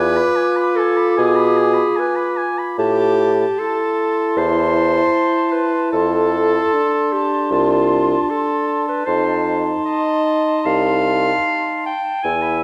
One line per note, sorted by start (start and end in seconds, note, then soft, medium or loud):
0.00 0.21 E2 medium
0.00 3.28 F4 medium
0.00 0.77 B4 loud
0.00 0.18 G#5 medium
0.00 3.32 D6 medium
0.16 0.38 B5 medium
0.36 0.58 G#5 medium
0.56 0.80 B5 medium
0.76 1.20 A4 loud
0.76 0.98 G#5 medium
0.97 1.16 B5 medium
1.17 1.85 B2 medium
1.17 2.01 G#4 loud
1.17 1.37 G#5 medium
1.36 1.59 B5 medium
1.57 1.75 G#5 medium
1.74 1.98 B5 medium
1.96 2.52 B4 loud
1.96 2.17 G#5 medium
2.16 2.39 B5 medium
2.37 2.60 G#5 medium
2.58 2.78 B5 medium
2.78 3.45 A2 medium
2.78 3.60 G4 loud
2.78 2.99 A5 medium
2.99 3.20 A5 medium
3.20 3.40 A5 medium
3.40 3.62 A5 medium
3.57 6.75 E4 medium
3.57 4.39 A4 loud
3.57 5.89 C6 medium
3.62 3.79 A5 medium
3.79 4.00 A5 medium
4.00 4.19 A5 medium
4.19 4.36 A5 medium
4.36 5.02 E2 medium
4.36 5.54 C5 loud
4.36 4.57 A5 medium
4.57 4.74 A5 medium
4.74 4.94 A5 medium
4.94 5.12 A5 medium
5.12 5.35 A5 medium
5.35 5.55 A5 medium
5.52 5.92 B4 medium
5.52 5.73 A5 medium
5.73 5.91 A5 medium
5.92 6.60 F2 medium
5.92 7.14 A4 loud
5.92 6.13 A5 medium
5.92 9.03 C6 medium
6.13 6.32 A5 medium
6.32 6.53 A5 medium
6.53 6.75 A5 medium
6.73 9.06 D4 medium
6.73 6.92 A5 medium
6.92 7.14 A5 medium
7.13 7.53 G4 loud
7.13 7.33 A5 medium
7.33 7.51 A5 medium
7.51 8.16 C2 medium
7.51 8.31 F4 loud
7.51 7.70 A5 medium
7.70 7.90 A5 medium
7.90 8.09 A5 medium
8.09 8.30 A5 medium
8.30 8.88 A4 loud
8.30 8.49 A5 medium
8.49 8.67 A5 medium
8.67 8.86 A5 medium
8.86 9.08 B4 medium
8.86 9.05 A5 medium
9.06 9.72 F2 medium
9.06 11.93 D#4 medium
9.06 9.58 C5 loud
9.06 9.25 A5 medium
9.06 11.93 C6 medium
9.25 9.42 A5 medium
9.42 9.63 A5 medium
9.63 9.86 A5 medium
9.85 10.67 D#5 loud
9.85 10.05 A5 medium
10.05 10.24 A5 medium
10.24 10.45 A5 medium
10.45 10.63 A5 medium
10.63 11.33 C2 medium
10.63 11.85 F5 loud
10.63 10.84 A5 medium
10.84 11.06 A5 medium
11.06 11.26 A5 medium
11.26 11.46 A5 medium
11.46 11.65 A5 medium
11.65 11.83 A5 medium
11.83 12.25 G5 medium
11.83 12.03 A5 medium
12.03 12.22 A5 medium
12.22 12.64 E2 medium
12.22 12.64 E4 medium
12.22 12.43 G#5 medium
12.22 12.62 G#5 loud
12.22 12.64 E6 medium
12.42 12.64 B5 medium